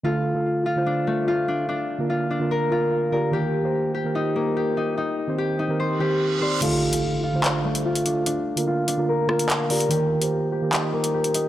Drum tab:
CC |----------------|----------------|----------------|----------------|
HH |----------------|----------------|----------------|----------------|
CP |----------------|----------------|----------------|----------------|
SD |----------------|----------------|----------------|----------------|

CC |x---------------|----------------|----------------|
HH |x--x----x--x-xx-|x--x--x----xx-ox|x--x----x--x-xx-|
CP |--------x-------|------------x---|--------x-------|
SD |----------------|----------r-----|----------------|